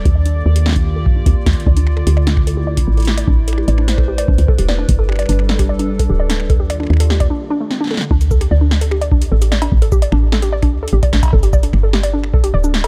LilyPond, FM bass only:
\new Staff \with { instrumentName = "FM bass" } { \clef bass \time 4/4 \key a \minor \tempo 4 = 149 ees,4 ees,4. g,8 ees,16 r16 ees,16 r16 | d,4 d,2 a,,4 | a,,4 a,,4. a,,16 d,16 r16 e,,8. | g,,4 g,,2 d,,4 |
ees,4 ees,4 r2 | d,4 d,2 a,,4 | a,,4 a,,4. d,8 a,,16 r16 a,,16 r16 | g,,4 g,,2 d,,4 | }